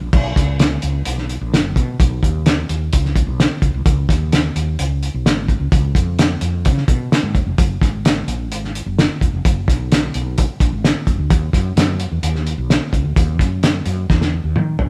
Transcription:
0.01 fretless electric bass A#1
0.13 fretless electric bass B1, kick, crash
0.36 fretless electric bass C#2, kick, snare, closed hi-hat
0.59 snare, closed hi-hat
0.82 fretless electric bass C#2, closed hi-hat
1.05 fretless electric bass B1, closed hi-hat
1.18 snare
1.29 closed hi-hat
1.41 fretless electric bass A#1
1.53 fretless electric bass F#1, snare, closed hi-hat
1.76 fretless electric bass B2, kick, closed hi-hat
2.00 fretless electric bass B1, kick, closed hi-hat
2.23 fretless electric bass D#2, kick, closed hi-hat
2.46 snare, closed hi-hat
2.69 fretless electric bass D#2, closed hi-hat
2.93 fretless electric bass C#2, kick, closed hi-hat
3.05 snare
3.16 kick, closed hi-hat
3.27 fretless electric bass B1
3.40 snare, closed hi-hat
3.62 fretless electric bass C#2, kick, closed hi-hat
3.74 fretless electric bass C2
3.86 fretless electric bass C#2, kick, closed hi-hat
4.09 fretless electric bass D#2, kick, snare, closed hi-hat
4.32 snare, closed hi-hat
4.56 fretless electric bass D#2, closed hi-hat
4.79 fretless electric bass C#2, closed hi-hat
5.03 closed hi-hat
5.14 fretless electric bass B1
5.26 fretless electric bass G#1, snare, closed hi-hat
5.48 kick, closed hi-hat
5.60 fretless electric bass C#2
5.72 fretless electric bass C#2, kick, closed hi-hat
5.95 fretless electric bass F2, kick, closed hi-hat
6.19 snare, closed hi-hat
6.41 fretless electric bass F2, closed hi-hat
6.65 fretless electric bass C#3, kick, closed hi-hat
6.78 snare
6.88 fretless electric bass B2, kick, closed hi-hat
7.12 snare, closed hi-hat
7.23 fretless electric bass G#2
7.34 fretless electric bass E1, kick, closed hi-hat
7.47 fretless electric bass F1
7.58 fretless electric bass F#1, kick, closed hi-hat
7.81 fretless electric bass G#1, kick, snare, closed hi-hat
8.05 snare, closed hi-hat
8.28 fretless electric bass A#1, closed hi-hat
8.51 fretless electric bass G#1, closed hi-hat
8.64 snare
8.75 closed hi-hat
8.86 fretless electric bass F#1
8.99 snare, closed hi-hat
9.21 fretless electric bass E1, kick, closed hi-hat
9.33 fretless electric bass F1
9.45 fretless electric bass F#1, kick, closed hi-hat
9.68 fretless electric bass B1, kick, snare, closed hi-hat
9.92 snare, closed hi-hat
10.14 fretless electric bass B1, closed hi-hat
10.38 kick, closed hi-hat
10.60 fretless electric bass A#1, kick, closed hi-hat
10.73 fretless electric bass G#1
10.84 snare, closed hi-hat
11.07 fretless electric bass F#1, kick, closed hi-hat
11.19 fretless electric bass D2
11.30 fretless electric bass D#2, kick, closed hi-hat
11.53 fretless electric bass F#2, kick, snare, closed hi-hat
11.76 fretless electric bass F#2, snare, closed hi-hat
12.00 closed hi-hat
12.12 fretless electric bass E2
12.23 fretless electric bass D#2, closed hi-hat
12.35 snare
12.47 closed hi-hat
12.58 fretless electric bass B1
12.70 snare, closed hi-hat
12.92 fretless electric bass C#2, kick, closed hi-hat
13.05 fretless electric bass D2
13.16 fretless electric bass D#2, kick, closed hi-hat
13.39 fretless electric bass F#2, kick, snare, closed hi-hat
13.63 snare, closed hi-hat
13.86 fretless electric bass F#2, closed hi-hat
14.10 fretless electric bass E2, kick, snare
14.21 snare
14.44 fretless electric bass D#2
14.56 fretless electric bass D#3, mid tom
14.79 fretless electric bass A#1, floor tom

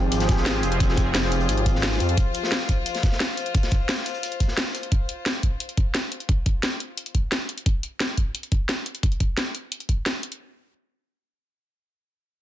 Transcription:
Already playing: detuned saw bass G#1, analog synth pad F3 C4 G4 G#4, string section F4 C5
0.12 detuned saw bass G#1, closed hi-hat
0.20 snare, closed hi-hat
0.28 kick, snare, closed hi-hat
0.37 snare
0.46 snare, closed hi-hat
0.63 detuned saw bass F1, closed hi-hat
0.72 closed hi-hat
0.80 kick, closed hi-hat
0.89 snare
0.97 kick, closed hi-hat
1.14 snare, closed hi-hat
1.24 snare
1.32 closed hi-hat
1.40 closed hi-hat
1.49 detuned saw bass G#1, closed hi-hat
1.57 closed hi-hat
1.66 kick, closed hi-hat
1.75 snare
1.82 snare, closed hi-hat
1.92 snare
2.00 detuned saw bass F2, closed hi-hat
2.09 closed hi-hat
2.17 kick, closed hi-hat
2.34 closed hi-hat
2.44 snare
2.51 snare, closed hi-hat
2.61 snare
2.69 kick, closed hi-hat
2.86 closed hi-hat
2.95 snare, closed hi-hat
3.03 kick, snare, closed hi-hat
3.12 snare
3.20 snare, closed hi-hat
3.37 closed hi-hat
3.46 closed hi-hat
3.54 kick, closed hi-hat
3.63 snare, closed hi-hat
3.71 kick, closed hi-hat
3.88 snare, closed hi-hat
3.97 snare
4.06 closed hi-hat
4.14 closed hi-hat
4.23 closed hi-hat
4.32 closed hi-hat
4.40 kick, closed hi-hat
4.48 snare
4.58 snare, closed hi-hat
4.66 snare
4.75 closed hi-hat
4.83 closed hi-hat
4.92 kick, closed hi-hat
5.09 closed hi-hat
5.26 snare, closed hi-hat
5.43 kick, closed hi-hat
5.60 closed hi-hat
5.69 closed hi-hat
5.77 kick, closed hi-hat
5.95 snare, closed hi-hat
6.12 closed hi-hat
6.20 closed hi-hat
6.29 kick, closed hi-hat
6.46 kick, closed hi-hat
6.63 snare, closed hi-hat
6.80 closed hi-hat
6.98 closed hi-hat
7.06 closed hi-hat
7.15 kick, closed hi-hat
7.32 snare, closed hi-hat
7.49 closed hi-hat
7.58 closed hi-hat
7.66 kick, closed hi-hat
7.83 closed hi-hat
8.00 snare, closed hi-hat
8.18 kick, closed hi-hat
8.35 closed hi-hat
8.43 closed hi-hat
8.52 kick, closed hi-hat
8.69 snare, closed hi-hat
8.86 closed hi-hat
8.95 closed hi-hat
9.03 kick, closed hi-hat
9.12 closed hi-hat
9.20 kick, closed hi-hat
9.37 snare, closed hi-hat
9.55 closed hi-hat
9.72 closed hi-hat
9.80 closed hi-hat
9.89 kick, closed hi-hat
10.06 snare, closed hi-hat
10.23 closed hi-hat
10.32 closed hi-hat

